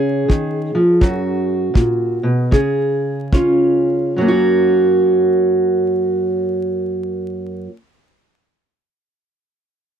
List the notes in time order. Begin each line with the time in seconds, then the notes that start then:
Already playing: C#3 C#4 G#4 C#5
0.28 D#3, kick
0.75 F3
1.01 F#2 F#4, kick
1.74 A#2, kick
2.23 B2
2.51 C#3 G#4, kick
3.33 C#4 F4, kick
4.16 F#2 F#3
4.21 A#3 C#4
4.28 F#4